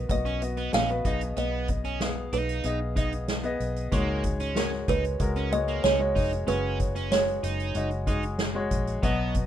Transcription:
Already playing: grand piano B3 F#4 D#5, kalimba B4
0.09 fingered electric bass B1, grand piano B3 F#4 D#5, kalimba D#5, kick, closed hi-hat
0.25 overdriven electric guitar C#4, closed hi-hat
0.41 grand piano B3 F#4 D#5, closed hi-hat
0.57 overdriven electric guitar B3, closed hi-hat
0.73 fingered electric bass A#1, overdriven electric guitar C#4, kalimba F5, snare, closed hi-hat
0.88 grand piano B3 F#4 B4, closed hi-hat
1.05 fingered electric bass B1, grand piano B2 B3 G#4 D#5, overdriven electric guitar D#4, kick, closed hi-hat
1.21 closed hi-hat
1.37 fingered electric bass B1, overdriven electric guitar B3, kalimba D#5, closed hi-hat
1.68 kick, closed hi-hat
1.84 overdriven electric guitar C#4, closed hi-hat
2.00 grand piano B3 G#4 F5, snare, closed hi-hat
2.33 fingered electric bass B1, overdriven electric guitar D#4, kalimba B4, closed hi-hat
2.49 closed hi-hat
2.64 fingered electric bass B1, grand piano B3 G#4 D#5, closed hi-hat
2.96 grand piano B3 G#4 D#5, overdriven electric guitar D#4, kick, closed hi-hat
3.12 closed hi-hat
3.28 snare, closed hi-hat
3.43 grand piano B3 G#4 D#5, closed hi-hat
3.60 fingered electric bass B1, closed hi-hat
3.76 closed hi-hat
3.92 fingered electric bass C#2, grand piano G#2 G#3 F#4 C#5, overdriven electric guitar A#3, kick, closed hi-hat
4.24 kick, closed hi-hat
4.40 overdriven electric guitar C#4, closed hi-hat
4.55 grand piano G#3 F#4 C#5, kalimba A#4, snare, closed hi-hat
4.72 snare
4.88 fingered electric bass C#2, overdriven electric guitar D#4, kalimba B4, kick, closed hi-hat
5.05 closed hi-hat
5.20 fingered electric bass C#2, grand piano G#3 F#4 A#4, kick, closed hi-hat
5.36 overdriven electric guitar C#4, closed hi-hat
5.51 grand piano G#3 F#4 C#5, kalimba D#5, closed hi-hat
5.68 overdriven electric guitar A#3, closed hi-hat
5.84 fingered electric bass C#2, overdriven electric guitar C#4, kalimba C#5, snare, closed hi-hat
5.99 grand piano G#3 F#4 C#5
6.16 fingered electric bass F1, overdriven electric guitar D#4, kick, open hi-hat
6.33 closed hi-hat
6.47 fingered electric bass F#1, grand piano C#3 G#3 F#4 C#5, overdriven electric guitar C#4, kalimba B4, closed hi-hat
6.80 kick, closed hi-hat
6.95 overdriven electric guitar C#4, closed hi-hat
7.11 grand piano G#3 F#4 C#5, kalimba C#5, snare, closed hi-hat
7.28 closed hi-hat
7.43 fingered electric bass F#1, overdriven electric guitar D#4, closed hi-hat
7.60 closed hi-hat
7.74 fingered electric bass F#1, grand piano G#3 F#4 D#5, closed hi-hat
7.91 closed hi-hat
8.07 grand piano G#3 F#4 G#4, overdriven electric guitar D#4, kick, closed hi-hat
8.23 closed hi-hat
8.39 snare, closed hi-hat
8.55 grand piano G#3 F#4 C#5
8.71 fingered electric bass A#1, kick, closed hi-hat
8.87 closed hi-hat
9.02 fingered electric bass B1, grand piano B2 F#3 B3 F#4 D#5, overdriven electric guitar B3, kick, closed hi-hat
9.35 kick, closed hi-hat

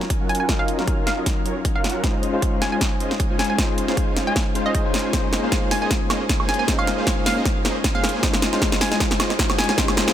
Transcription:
Already playing: tine electric piano F#3 C#4 D#4 F4 A#4
0.01 snare
0.10 kick, closed hi-hat
0.21 supersaw synth F#3 C#4 F4 A#4 F#5
0.29 synth pluck G#5, closed hi-hat
0.35 closed hi-hat
0.40 synth pluck G#5
0.48 tine electric piano F#3 C#4 D#4 F4 A#4, supersaw synth F#3 C#4 F4 A#4, kick, snare, closed hi-hat
0.59 synth pluck F5
0.68 closed hi-hat
0.77 tine electric piano F#3 C#4 D#4 F4 A#4, supersaw synth F#3 C#4 F4 A#4 F5, snare
0.88 kick, closed hi-hat
1.07 synth pluck F5, snare, closed hi-hat
1.17 supersaw synth F#3 C#4 F4 A#4 D#5
1.26 kick, snare, closed hi-hat
1.45 supersaw synth F#3 C#4 F4 A#4 C#5, closed hi-hat
1.65 kick, closed hi-hat
1.75 supersaw synth F#3 C#4 F4 A#4 F#5, synth pluck F5
1.84 snare, closed hi-hat
1.90 closed hi-hat
2.03 tine electric piano G#3 C#4 D#4 F4 C5, supersaw synth C#4 C5 D#5, kick, snare, closed hi-hat
2.23 closed hi-hat
2.32 tine electric piano G#3 C#4 D#4 F4 C5, supersaw synth G#3 C#4 F4 C5 F5
2.42 kick, closed hi-hat
2.62 synth pluck G#5, snare, closed hi-hat
2.72 supersaw synth G#3 C#4 F4 C5 D#5, synth pluck G#5
2.81 kick, snare, closed hi-hat
3.00 supersaw synth G#3 C#4 F4 C5 D#5, closed hi-hat
3.11 snare
3.20 kick, closed hi-hat
3.30 supersaw synth G#3 C#4 F4 C5 G#5
3.39 synth pluck G#5, snare, closed hi-hat
3.44 closed hi-hat
3.50 synth pluck G#5
3.57 tine electric piano G#3 C#4 D#4 F4 C5, supersaw synth G#3 C#4 F4 D#5, kick, snare, closed hi-hat
3.78 closed hi-hat
3.86 tine electric piano G#3 C#4 D#4 F4, supersaw synth G#3 C#4 F4 C5 F5, snare
3.90 tine electric piano C5
3.97 kick, closed hi-hat
4.17 snare, closed hi-hat
4.27 supersaw synth G#3 C#4 F4 C5 D#5, synth pluck G#5
4.36 kick, snare, closed hi-hat
4.54 tine electric piano G#3 C#4 D#4 F4 C5, supersaw synth G#3 C#4 F4 C5 F5, closed hi-hat
4.66 supersaw synth G#3 C#4 F4 C5 F5, synth pluck D#5
4.74 tine electric piano G#3 C#4 D#4 F4 C5, synth pluck D#5, kick, closed hi-hat
4.84 tine electric piano G#3 C#4 D#4 F4 C5, supersaw synth G#3 C#4 F4 C5 G#5
4.94 snare, closed hi-hat
4.99 closed hi-hat
5.12 tine electric piano G#3 C#4 D#4 F4 C5, supersaw synth A#3 C#4 G#4 C5 D#5, kick, snare, closed hi-hat, riser
5.33 snare, closed hi-hat
5.42 tine electric piano G#3 C#4 D#4 F4 C5, supersaw synth A#3 C#4 G#4 C5 F5
5.52 kick, snare, closed hi-hat
5.71 synth pluck G#5, snare, open hi-hat
5.82 supersaw synth A#3 C#4 G#4 C5 D#5, synth pluck G#5
5.91 kick, snare, closed hi-hat
6.10 supersaw synth A#3 C#4 G#4 C5 D#5, snare, closed hi-hat, high woodblock
6.29 kick, snare, closed hi-hat
6.40 supersaw synth A#3 C#4 G#4 C5 G#5, high woodblock
6.49 synth pluck G#5, snare, closed hi-hat
6.54 closed hi-hat
6.59 synth pluck G#5
6.67 tine electric piano G#3 C#4 D#4 F4 C5, supersaw synth A#3 C#4 G#4 C5 D#5, kick, snare, closed hi-hat
6.79 synth pluck F5, high woodblock
6.87 snare, closed hi-hat
6.96 tine electric piano G#3 C#4 D#4 F4, supersaw synth A#3 C#4 G#4 C5 F5
7.00 tine electric piano C5
7.07 kick, snare, closed hi-hat
7.26 synth pluck F5, snare, open hi-hat
7.37 supersaw synth A#3 C#4 G#4 C5 D#5
7.46 kick, snare, closed hi-hat
7.65 supersaw synth A#3 C#4 G#4 C5 D#5, snare, closed hi-hat
7.84 kick, snare, closed hi-hat
7.95 supersaw synth A#3 C#4 G#4 C5 G#5, synth pluck F5
8.04 snare, closed hi-hat
8.09 closed hi-hat
8.22 tine electric piano G#3 C#4 D#4 F4 C5, supersaw synth G#3 C#4 F4 C5 D#5, kick, snare, closed hi-hat
8.34 snare
8.42 snare, closed hi-hat
8.52 tine electric piano G#3 C#4 D#4 F4 C5, supersaw synth G#3 C#4 F4 C5 F5, snare
8.62 kick, snare, closed hi-hat
8.72 snare
8.81 synth pluck G#5, snare, open hi-hat
8.92 supersaw synth G#3 C#4 F4 C5 D#5, synth pluck G#5, snare
9.00 kick, snare, closed hi-hat
9.11 snare
9.20 supersaw synth G#3 C#4 F4 C5 D#5, snare, closed hi-hat, high woodblock
9.30 snare
9.39 kick, snare, closed hi-hat
9.50 supersaw synth G#3 C#4 F4 C5 G#5, snare, high woodblock
9.59 synth pluck G#5, snare, closed hi-hat
9.64 closed hi-hat
9.69 synth pluck G#5, snare
9.77 tine electric piano G#3 C#4 D#4 F4 C5, supersaw synth C#4 F4, kick, snare, closed hi-hat
9.88 snare, high woodblock
9.97 snare, closed hi-hat
10.06 tine electric piano G#3 C#4 D#4 F4, supersaw synth G#3 C#4 F4 C5 F5, snare
10.10 tine electric piano C5

